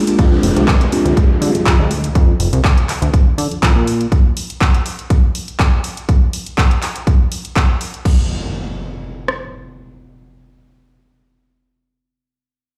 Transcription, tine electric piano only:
0, 0, Header, 1, 2, 480
1, 0, Start_track
1, 0, Tempo, 491803
1, 180, Time_signature, 4, 2, 24, 8
1, 12469, End_track
2, 0, Start_track
2, 0, Title_t, "Tine electric piano"
2, 0, Program_c, 0, 4
2, 66, Note_on_c, 0, 56, 86
2, 68, Note_on_c, 0, 58, 78
2, 71, Note_on_c, 0, 62, 79
2, 72, Note_on_c, 0, 65, 76
2, 75, Note_on_c, 0, 67, 92
2, 162, Note_off_c, 0, 56, 0
2, 163, Note_off_c, 0, 58, 0
2, 164, Note_off_c, 0, 62, 0
2, 165, Note_off_c, 0, 65, 0
2, 166, Note_off_c, 0, 67, 0
2, 179, Note_on_c, 0, 56, 93
2, 181, Note_on_c, 0, 60, 84
2, 183, Note_on_c, 0, 62, 87
2, 184, Note_on_c, 0, 65, 88
2, 187, Note_on_c, 0, 67, 106
2, 517, Note_off_c, 0, 56, 0
2, 518, Note_off_c, 0, 60, 0
2, 519, Note_off_c, 0, 62, 0
2, 519, Note_off_c, 0, 65, 0
2, 521, Note_off_c, 0, 67, 0
2, 545, Note_on_c, 0, 56, 93
2, 547, Note_on_c, 0, 60, 85
2, 549, Note_on_c, 0, 62, 86
2, 551, Note_on_c, 0, 65, 82
2, 554, Note_on_c, 0, 67, 101
2, 648, Note_off_c, 0, 56, 0
2, 649, Note_off_c, 0, 60, 0
2, 650, Note_off_c, 0, 62, 0
2, 651, Note_off_c, 0, 65, 0
2, 652, Note_off_c, 0, 67, 0
2, 895, Note_on_c, 0, 56, 92
2, 897, Note_on_c, 0, 60, 83
2, 899, Note_on_c, 0, 62, 85
2, 901, Note_on_c, 0, 65, 85
2, 903, Note_on_c, 0, 67, 102
2, 1350, Note_off_c, 0, 56, 0
2, 1351, Note_off_c, 0, 60, 0
2, 1352, Note_off_c, 0, 62, 0
2, 1353, Note_off_c, 0, 65, 0
2, 1355, Note_off_c, 0, 67, 0
2, 1377, Note_on_c, 0, 56, 78
2, 1379, Note_on_c, 0, 60, 70
2, 1381, Note_on_c, 0, 62, 70
2, 1383, Note_on_c, 0, 65, 70
2, 1385, Note_on_c, 0, 67, 83
2, 1716, Note_off_c, 0, 56, 0
2, 1717, Note_off_c, 0, 60, 0
2, 1718, Note_off_c, 0, 62, 0
2, 1719, Note_off_c, 0, 65, 0
2, 1720, Note_off_c, 0, 67, 0
2, 1745, Note_on_c, 0, 56, 94
2, 1748, Note_on_c, 0, 60, 85
2, 1749, Note_on_c, 0, 62, 85
2, 1752, Note_on_c, 0, 65, 84
2, 1753, Note_on_c, 0, 67, 102
2, 1848, Note_off_c, 0, 56, 0
2, 1849, Note_off_c, 0, 60, 0
2, 1850, Note_off_c, 0, 62, 0
2, 1851, Note_off_c, 0, 65, 0
2, 1852, Note_off_c, 0, 67, 0
2, 12469, End_track
0, 0, End_of_file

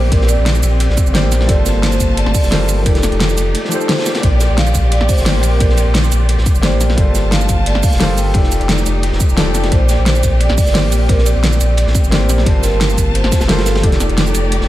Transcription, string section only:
0, 0, Header, 1, 2, 480
1, 0, Start_track
1, 0, Key_signature, -2, "major"
1, 0, Tempo, 342857
1, 167, Time_signature, 4, 2, 24, 8
1, 20553, End_track
2, 0, Start_track
2, 0, Title_t, "String section"
2, 0, Program_c, 0, 48
2, 0, Note_on_c, 0, 60, 85
2, 0, Note_on_c, 0, 67, 91
2, 0, Note_on_c, 0, 74, 74
2, 2030, Note_off_c, 0, 67, 0
2, 2031, Note_off_c, 0, 74, 0
2, 2083, Note_on_c, 0, 65, 74
2, 2086, Note_on_c, 0, 81, 92
2, 2087, Note_on_c, 0, 58, 85
2, 3952, Note_off_c, 0, 60, 0
2, 3986, Note_off_c, 0, 65, 0
2, 3988, Note_off_c, 0, 58, 0
2, 3988, Note_off_c, 0, 81, 0
2, 3997, Note_on_c, 0, 57, 77
2, 3997, Note_on_c, 0, 74, 76
2, 3998, Note_on_c, 0, 63, 74
2, 3999, Note_on_c, 0, 67, 93
2, 5903, Note_off_c, 0, 57, 0
2, 5903, Note_off_c, 0, 63, 0
2, 5921, Note_on_c, 0, 60, 82
2, 9706, Note_off_c, 0, 74, 0
2, 9707, Note_off_c, 0, 67, 0
2, 9725, Note_off_c, 0, 60, 0
2, 9760, Note_on_c, 0, 58, 82
2, 9760, Note_on_c, 0, 65, 78
2, 9760, Note_on_c, 0, 81, 91
2, 9764, Note_on_c, 0, 60, 73
2, 11664, Note_off_c, 0, 58, 0
2, 11664, Note_off_c, 0, 81, 0
2, 11665, Note_off_c, 0, 65, 0
2, 11666, Note_off_c, 0, 60, 0
2, 11687, Note_on_c, 0, 57, 78
2, 11687, Note_on_c, 0, 67, 93
2, 11688, Note_on_c, 0, 63, 76
2, 11688, Note_on_c, 0, 74, 79
2, 13588, Note_off_c, 0, 57, 0
2, 13588, Note_off_c, 0, 63, 0
2, 13607, Note_on_c, 0, 60, 80
2, 17391, Note_off_c, 0, 67, 0
2, 17392, Note_off_c, 0, 74, 0
2, 17450, Note_on_c, 0, 58, 80
2, 17451, Note_on_c, 0, 65, 75
2, 17453, Note_on_c, 0, 81, 86
2, 19311, Note_off_c, 0, 60, 0
2, 19349, Note_off_c, 0, 58, 0
2, 19350, Note_off_c, 0, 65, 0
2, 19351, Note_off_c, 0, 81, 0
2, 19370, Note_on_c, 0, 67, 94
2, 19371, Note_on_c, 0, 63, 76
2, 19371, Note_on_c, 0, 74, 75
2, 19372, Note_on_c, 0, 57, 79
2, 20553, Note_off_c, 0, 57, 0
2, 20553, Note_off_c, 0, 63, 0
2, 20553, Note_off_c, 0, 67, 0
2, 20553, Note_off_c, 0, 74, 0
2, 20553, End_track
0, 0, End_of_file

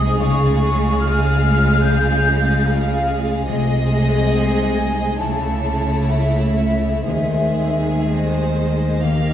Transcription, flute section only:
0, 0, Header, 1, 2, 480
1, 0, Start_track
1, 0, Key_signature, -4, "major"
1, 0, Tempo, 819672
1, 115, Time_signature, 4, 2, 24, 8
1, 2036, Tempo, 864553
1, 2996, Tempo, 891530
1, 3476, Tempo, 991736
1, 4436, Tempo, 949367
1, 5070, End_track
2, 0, Start_track
2, 0, Title_t, "Flute section"
2, 0, Program_c, 0, 73
2, 0, Note_on_c, 0, 87, 91
2, 106, Note_off_c, 0, 87, 0
2, 109, Note_on_c, 0, 85, 81
2, 579, Note_off_c, 0, 85, 0
2, 588, Note_on_c, 0, 89, 91
2, 1060, Note_off_c, 0, 89, 0
2, 1067, Note_on_c, 0, 91, 89
2, 1553, Note_off_c, 0, 91, 0
2, 1555, Note_on_c, 0, 77, 90
2, 1888, Note_off_c, 0, 77, 0
2, 2041, Note_on_c, 0, 75, 79
2, 2519, Note_off_c, 0, 75, 0
2, 2528, Note_on_c, 0, 80, 78
2, 2993, Note_on_c, 0, 81, 70
2, 2997, Note_off_c, 0, 80, 0
2, 3469, Note_on_c, 0, 76, 76
2, 3474, Note_off_c, 0, 81, 0
2, 3934, Note_off_c, 0, 76, 0
2, 3940, Note_on_c, 0, 76, 71
2, 4421, Note_off_c, 0, 76, 0
2, 4434, Note_on_c, 0, 75, 63
2, 5070, Note_off_c, 0, 75, 0
2, 5070, End_track
0, 0, End_of_file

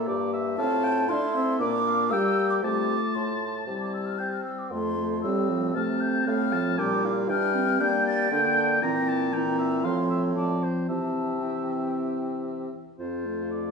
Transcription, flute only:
0, 0, Header, 1, 2, 480
1, 0, Start_track
1, 0, Key_signature, -1, "major"
1, 0, Tempo, 514139
1, 545, Time_signature, 4, 2, 24, 8
1, 9675, Tempo, 524934
1, 12736, End_track
2, 0, Start_track
2, 0, Title_t, "Flute"
2, 0, Program_c, 0, 73
2, 0, Note_on_c, 0, 82, 103
2, 283, Note_off_c, 0, 82, 0
2, 537, Note_on_c, 0, 81, 127
2, 1017, Note_on_c, 0, 84, 123
2, 1031, Note_off_c, 0, 81, 0
2, 1482, Note_off_c, 0, 84, 0
2, 1488, Note_on_c, 0, 86, 127
2, 1969, Note_on_c, 0, 88, 120
2, 1983, Note_off_c, 0, 86, 0
2, 2329, Note_off_c, 0, 88, 0
2, 2334, Note_on_c, 0, 86, 94
2, 2389, Note_off_c, 0, 86, 0
2, 2455, Note_on_c, 0, 86, 109
2, 2939, Note_on_c, 0, 84, 89
2, 2953, Note_off_c, 0, 86, 0
2, 3325, Note_off_c, 0, 84, 0
2, 3551, Note_on_c, 0, 86, 85
2, 3663, Note_off_c, 0, 86, 0
2, 3668, Note_on_c, 0, 88, 83
2, 3788, Note_on_c, 0, 89, 88
2, 3802, Note_off_c, 0, 88, 0
2, 3907, Note_on_c, 0, 91, 88
2, 3921, Note_off_c, 0, 89, 0
2, 4024, Note_off_c, 0, 91, 0
2, 4029, Note_on_c, 0, 89, 78
2, 4136, Note_off_c, 0, 89, 0
2, 4142, Note_on_c, 0, 88, 81
2, 4283, Note_on_c, 0, 86, 74
2, 4297, Note_off_c, 0, 88, 0
2, 4385, Note_off_c, 0, 86, 0
2, 4391, Note_on_c, 0, 84, 101
2, 4875, Note_off_c, 0, 84, 0
2, 4888, Note_on_c, 0, 88, 102
2, 5372, Note_on_c, 0, 89, 92
2, 5386, Note_off_c, 0, 88, 0
2, 5607, Note_on_c, 0, 91, 102
2, 5621, Note_off_c, 0, 89, 0
2, 5860, Note_on_c, 0, 89, 116
2, 5874, Note_off_c, 0, 91, 0
2, 6328, Note_off_c, 0, 89, 0
2, 6334, Note_on_c, 0, 86, 119
2, 6638, Note_off_c, 0, 86, 0
2, 6816, Note_on_c, 0, 89, 123
2, 7289, Note_on_c, 0, 91, 108
2, 7303, Note_off_c, 0, 89, 0
2, 7526, Note_off_c, 0, 91, 0
2, 7532, Note_on_c, 0, 93, 123
2, 7756, Note_off_c, 0, 93, 0
2, 7761, Note_on_c, 0, 91, 123
2, 8229, Note_off_c, 0, 91, 0
2, 8241, Note_on_c, 0, 79, 120
2, 8708, Note_on_c, 0, 82, 107
2, 8722, Note_off_c, 0, 79, 0
2, 9187, Note_on_c, 0, 84, 121
2, 9201, Note_off_c, 0, 82, 0
2, 9666, Note_off_c, 0, 84, 0
2, 9672, Note_on_c, 0, 81, 93
2, 9933, Note_off_c, 0, 81, 0
2, 10147, Note_on_c, 0, 81, 94
2, 10636, Note_on_c, 0, 79, 75
2, 10650, Note_off_c, 0, 81, 0
2, 11840, Note_off_c, 0, 79, 0
2, 12085, Note_on_c, 0, 77, 58
2, 12736, Note_off_c, 0, 77, 0
2, 12736, End_track
0, 0, End_of_file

